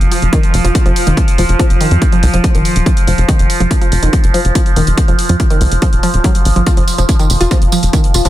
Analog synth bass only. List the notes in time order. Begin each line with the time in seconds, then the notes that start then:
0.01 F1
0.22 F1
0.54 F1
0.64 F1
0.86 F1
1.07 F1
1.38 F1
1.49 F1
1.70 F1
1.91 F2
2.23 C2
2.33 F1
2.55 D#1
2.76 D#1
3.07 F1
3.18 F1
3.39 F1
3.60 F1
3.92 F1
4.03 F1
4.24 F1
4.45 F1
4.76 F1
4.87 F1
5.08 F1
5.29 F2
5.61 C2
5.71 F1
5.93 D#1
6.14 D#1
6.45 G#1
6.56 G#1
6.77 F1
6.98 F1
7.30 F1
7.41 F1
7.62 F1
7.83 F1
8.14 F1
8.25 F1